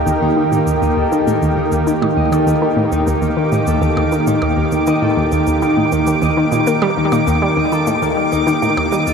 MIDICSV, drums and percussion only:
0, 0, Header, 1, 3, 480
1, 0, Start_track
1, 0, Tempo, 600000
1, 57, Time_signature, 4, 2, 24, 8
1, 7308, End_track
2, 0, Start_track
2, 0, Title_t, "Percussion blips"
2, 1619, Note_on_c, 9, 77, 83
2, 1699, Note_off_c, 9, 77, 0
2, 1860, Note_on_c, 9, 77, 75
2, 1940, Note_off_c, 9, 77, 0
2, 3176, Note_on_c, 9, 77, 78
2, 3256, Note_off_c, 9, 77, 0
2, 3534, Note_on_c, 9, 77, 77
2, 3614, Note_off_c, 9, 77, 0
2, 5454, Note_on_c, 9, 77, 75
2, 5534, Note_off_c, 9, 77, 0
2, 5696, Note_on_c, 9, 77, 69
2, 5776, Note_off_c, 9, 77, 0
2, 7019, Note_on_c, 9, 77, 72
2, 7099, Note_off_c, 9, 77, 0
2, 7308, End_track
3, 0, Start_track
3, 0, Title_t, "Drums"
3, 58, Note_on_c, 9, 69, 68
3, 138, Note_off_c, 9, 69, 0
3, 420, Note_on_c, 9, 69, 52
3, 500, Note_off_c, 9, 69, 0
3, 538, Note_on_c, 9, 69, 63
3, 618, Note_off_c, 9, 69, 0
3, 660, Note_on_c, 9, 69, 36
3, 740, Note_off_c, 9, 69, 0
3, 900, Note_on_c, 9, 69, 51
3, 980, Note_off_c, 9, 69, 0
3, 1020, Note_on_c, 9, 69, 63
3, 1100, Note_off_c, 9, 69, 0
3, 1139, Note_on_c, 9, 69, 38
3, 1219, Note_off_c, 9, 69, 0
3, 1377, Note_on_c, 9, 69, 55
3, 1457, Note_off_c, 9, 69, 0
3, 1498, Note_on_c, 9, 69, 65
3, 1578, Note_off_c, 9, 69, 0
3, 1860, Note_on_c, 9, 69, 55
3, 1940, Note_off_c, 9, 69, 0
3, 1979, Note_on_c, 9, 69, 67
3, 2059, Note_off_c, 9, 69, 0
3, 2338, Note_on_c, 9, 69, 54
3, 2418, Note_off_c, 9, 69, 0
3, 2458, Note_on_c, 9, 69, 67
3, 2538, Note_off_c, 9, 69, 0
3, 2578, Note_on_c, 9, 69, 37
3, 2658, Note_off_c, 9, 69, 0
3, 2817, Note_on_c, 9, 69, 54
3, 2897, Note_off_c, 9, 69, 0
3, 2937, Note_on_c, 9, 69, 63
3, 3017, Note_off_c, 9, 69, 0
3, 3058, Note_on_c, 9, 69, 39
3, 3138, Note_off_c, 9, 69, 0
3, 3295, Note_on_c, 9, 69, 54
3, 3375, Note_off_c, 9, 69, 0
3, 3417, Note_on_c, 9, 69, 66
3, 3497, Note_off_c, 9, 69, 0
3, 3775, Note_on_c, 9, 69, 53
3, 3855, Note_off_c, 9, 69, 0
3, 3895, Note_on_c, 9, 69, 66
3, 3975, Note_off_c, 9, 69, 0
3, 4255, Note_on_c, 9, 69, 52
3, 4335, Note_off_c, 9, 69, 0
3, 4375, Note_on_c, 9, 69, 68
3, 4455, Note_off_c, 9, 69, 0
3, 4496, Note_on_c, 9, 69, 36
3, 4576, Note_off_c, 9, 69, 0
3, 4736, Note_on_c, 9, 69, 51
3, 4816, Note_off_c, 9, 69, 0
3, 4855, Note_on_c, 9, 69, 65
3, 4935, Note_off_c, 9, 69, 0
3, 4975, Note_on_c, 9, 69, 38
3, 5055, Note_off_c, 9, 69, 0
3, 5216, Note_on_c, 9, 69, 55
3, 5296, Note_off_c, 9, 69, 0
3, 5336, Note_on_c, 9, 69, 67
3, 5416, Note_off_c, 9, 69, 0
3, 5696, Note_on_c, 9, 69, 56
3, 5776, Note_off_c, 9, 69, 0
3, 5818, Note_on_c, 9, 69, 64
3, 5898, Note_off_c, 9, 69, 0
3, 6178, Note_on_c, 9, 69, 51
3, 6258, Note_off_c, 9, 69, 0
3, 6296, Note_on_c, 9, 69, 62
3, 6376, Note_off_c, 9, 69, 0
3, 6418, Note_on_c, 9, 69, 36
3, 6498, Note_off_c, 9, 69, 0
3, 6657, Note_on_c, 9, 69, 50
3, 6737, Note_off_c, 9, 69, 0
3, 6779, Note_on_c, 9, 69, 62
3, 6859, Note_off_c, 9, 69, 0
3, 6898, Note_on_c, 9, 69, 38
3, 6978, Note_off_c, 9, 69, 0
3, 7138, Note_on_c, 9, 69, 53
3, 7218, Note_off_c, 9, 69, 0
3, 7257, Note_on_c, 9, 69, 65
3, 7308, Note_off_c, 9, 69, 0
3, 7308, End_track
0, 0, End_of_file